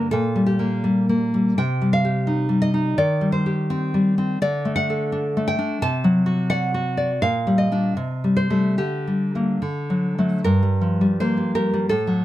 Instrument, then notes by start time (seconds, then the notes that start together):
nylon-string guitar
Already playing: D3 A#3 A#4
0.11 A#2 A4
0.36 G3
0.46 G4
0.59 A#3
0.84 G3
1.09 A#3
1.34 G3
1.58 C3 G5
1.81 G3
1.93 F5
2.05 G4
2.27 D#4
2.49 G3
2.62 D#5
2.74 D#4
2.98 D#3 D5
3.21 G3
3.32 C5
3.46 G4
3.70 C4
3.94 G3
4.18 C4
4.42 D3 D5
4.65 A3
4.76 F#5
4.90 A4
5.12 D4
5.37 A3
5.48 G5
5.59 D4
5.82 C3 A5
6.04 F#3
6.26 F#4
6.50 D5 F#5
6.74 F#4
6.97 D5
7.22 A#2 F5
7.47 G3
7.58 D#5
7.71 G3 D4
7.97 C3
8.24 G3
8.37 C5
8.50 G3 A3
8.78 D3 G4
9.07 G3
9.35 G3 A#3
9.62 D3
9.90 F#3
10.18 F#3 A3
10.44 G2 A#4
10.63 G3
10.81 F3
11.01 G3
11.20 A#3 C5
11.37 G3
11.55 G4 A#4
11.74 G3
11.89 A2 A4
12.07 F#3